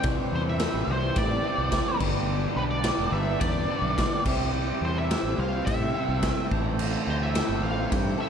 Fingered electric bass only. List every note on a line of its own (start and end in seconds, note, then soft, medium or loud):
0.04 0.15 C2 loud
0.32 0.65 E2 medium
0.74 0.85 A1 medium
0.87 1.10 C2 medium
1.16 1.38 A2 loud
1.58 1.80 C2 medium
2.01 2.45 G1 loud
2.56 2.90 B1 medium
2.98 3.10 E1 medium
3.12 3.35 G1 loud
3.41 3.63 E2 loud
3.82 4.05 B1 loud
4.26 4.70 C2 loud
4.81 5.15 E2 medium
5.23 5.35 A1 medium
5.38 5.60 C2 loud
5.67 5.89 A2 loud
6.09 6.31 C2 medium
6.51 6.95 A1 medium
7.07 7.40 D2 medium
7.49 7.60 G1 medium
7.63 7.85 A1 loud
7.92 8.14 G2 loud